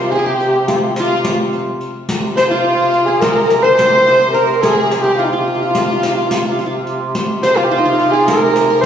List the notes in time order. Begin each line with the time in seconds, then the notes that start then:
Already playing: C3 F4 G#4 A#4 C5
0.11 G#4
0.16 G4 G#4
0.25 G4
0.40 riq
0.68 F4, riq
0.76 G4
0.83 F4
0.92 G4
0.96 F4, riq
1.01 F4
1.25 riq
1.53 riq
1.81 riq
2.09 C3, riq
2.36 C5, riq
2.51 F4
2.94 riq
3.06 G#4
3.20 A#4, riq
3.50 riq
3.63 C5
3.71 C5
3.78 C5, riq
3.87 C5
3.93 C5
4.07 C5, riq
4.19 C5
4.33 A#4, riq
4.61 G#4, riq
4.91 riq
5.02 G4
5.17 F4
5.24 D#4
5.30 F4
5.40 F4
5.48 F4
5.55 F4
5.63 F4
5.71 F4
5.75 F4, riq
5.85 F4
5.92 F4
5.99 F4
6.03 F4, riq
6.14 F4
6.22 F4
6.30 F4, riq
6.37 F4
6.45 F4
6.51 F4
6.59 F4, riq
6.66 F4
6.87 riq
7.15 C3, riq
7.43 C5, riq
7.57 F4
7.64 G4
7.71 F4
7.78 D#4
7.85 F4
7.99 riq
8.10 G4 G#4
8.26 A#4, riq
8.56 riq
8.70 A#4
8.81 C5